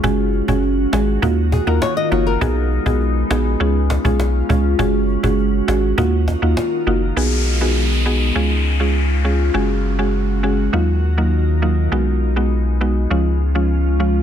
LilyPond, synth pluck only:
\new Staff \with { instrumentName = "Synth pluck" } { \time 4/4 \key ces \lydian \tempo 4 = 101 <aes des' ges' aes'>8. <aes des' ges' aes'>8. <aes des' ges' aes'>8 <bes ees' f' ges'>16 r8 <bes ees' f' ges'>16 r8 <bes ees' f' ges'>16 r16 | <b dis' fis' gis'>8. <b dis' fis' gis'>8. <b dis' fis' gis'>8 <aes des' f' aes'>16 r8 <aes des' f' aes'>16 r8 <aes des' f' aes'>16 r16 | <aes des' ges' aes'>8. <aes des' ges' aes'>8. <aes des' ges' aes'>8 <bes ees' f' ges'>16 r8 <bes ees' f' ges'>16 r8 <bes ees' f' ges'>16 r16 | <b dis' fis' gis'>8. <b dis' fis' gis'>8. <b dis' fis' gis'>8 <aes des' f' aes'>16 r8 <aes des' f' aes'>16 r8 <aes des' f' aes'>16 r16 |
<aes des' ges' aes'>8. <aes des' ges' aes'>8. <aes des' ges' aes'>8 <ges bes ees' f'>16 r8 <ges bes ees' f'>16 r8 <ges bes ees' f'>16 r16 | <gis b dis' fis'>8. <gis b dis' fis'>8. <gis b dis' fis'>8 <f aes des' f'>16 r8 <f aes des' f'>16 r8 <f aes des' f'>16 r16 | }